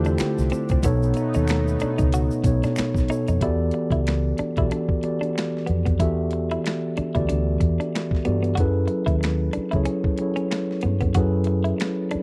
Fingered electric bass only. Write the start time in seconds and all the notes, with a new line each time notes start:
Already playing: E2
0.21 muted fingered electric bass stroke
0.39 C2
0.71 C2
0.85 B1
1.36 D#2
1.83 muted fingered electric bass stroke
2.00 C#2
2.45 B1
2.65 B2
2.79 muted fingered electric bass stroke
2.96 B1
3.29 F2
3.43 E2
3.92 C#2
4.40 muted fingered electric bass stroke
4.58 B1
5.70 F2
6.01 E2
6.99 muted fingered electric bass stroke
7.17 D2
7.31 D2
7.61 E2
8.28 G2
8.59 F#2
9.08 D#2
9.57 muted fingered electric bass stroke
9.74 C#2
10.85 G2
11.16 F#2
12.15 muted fingered electric bass stroke